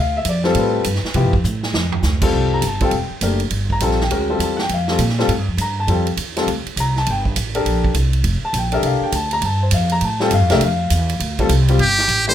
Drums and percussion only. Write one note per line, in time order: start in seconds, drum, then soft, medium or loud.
0.25 hi-hat pedal medium
0.25 ride medium
0.44 snare soft
0.55 ride medium
0.84 hi-hat pedal medium
0.84 ride medium
0.95 snare soft
1.05 snare soft
1.14 ride medium
1.33 kick medium
1.44 hi-hat pedal medium
1.63 snare medium
1.74 snare medium
1.92 floor tom medium
2.03 snare medium
2.03 hi-hat pedal medium
2.22 kick medium
2.22 crash medium
2.62 hi-hat pedal medium
2.62 ride medium
2.80 kick medium
2.80 ride soft
2.91 ride medium
3.21 hi-hat pedal medium
3.21 ride medium
3.40 ride soft
3.50 ride medium
3.70 kick soft
3.80 hi-hat pedal medium
3.80 ride medium
3.91 snare soft
4.01 snare soft
4.11 ride medium
4.40 hi-hat pedal medium
4.40 ride medium
4.59 snare medium
4.69 ride medium
4.88 snare medium
4.99 hi-hat pedal medium
4.99 ride medium
5.09 snare soft
5.19 snare soft
5.29 ride medium
5.58 hi-hat pedal medium
5.58 ride medium
5.88 ride medium
6.07 ride medium
6.17 hi-hat pedal medium
6.17 ride medium
6.37 snare medium
6.37 ride soft
6.48 ride medium
6.66 ride soft
6.77 hi-hat pedal medium
6.77 ride medium
6.96 snare soft
7.06 ride medium
7.25 kick medium
7.36 hi-hat pedal medium
7.36 ride medium
7.55 ride soft
7.66 ride medium
7.84 kick medium
7.94 hi-hat pedal medium
7.94 ride medium
8.13 ride soft
8.24 ride medium
8.54 hi-hat pedal medium
8.54 ride medium
8.72 ride soft
8.83 ride medium
9.12 hi-hat pedal medium
9.12 ride medium
9.31 ride medium
9.42 ride medium
9.71 hi-hat pedal medium
9.71 ride medium
9.89 ride soft
10.01 ride medium
10.20 snare soft
10.31 hi-hat pedal medium
10.31 ride medium
10.50 snare medium
10.50 ride medium
10.61 ride medium
10.90 hi-hat pedal medium
10.90 ride medium
11.09 ride medium
11.20 ride medium
11.39 kick medium
11.39 ride medium
11.49 hi-hat pedal medium
11.49 ride medium
11.68 ride medium
11.79 ride medium
11.98 snare medium
12.08 hi-hat pedal medium
12.08 ride medium